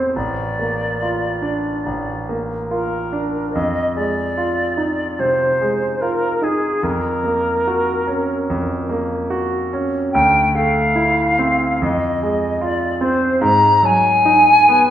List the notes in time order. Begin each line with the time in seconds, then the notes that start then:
Already playing: E2 A3 C4 G4 C5
0.14 A1 D5
0.59 A#3
1.02 F4
1.42 D4
1.86 A1
2.29 A#3
2.70 F4 A#4
3.13 D4
3.52 F2 D#5
3.95 G#3 D5
4.37 F4
4.77 D#4
5.19 C3 C5
5.61 G#3
6.01 F4 A#4
6.42 D#4 G#4
6.83 F2 A#4
7.24 A#3
7.67 F#4
8.07 C#4
8.50 F2
8.89 A#3
9.30 F#4
9.73 C#4
10.12 D2 G5
10.55 A3 F5
10.95 E4
11.39 C4
11.82 F2 D#5
12.22 G#3
12.61 F4 D5
13.01 C4 C5
13.41 G#2 A#5
13.83 F#3 G#5
14.25 D#4
14.69 B3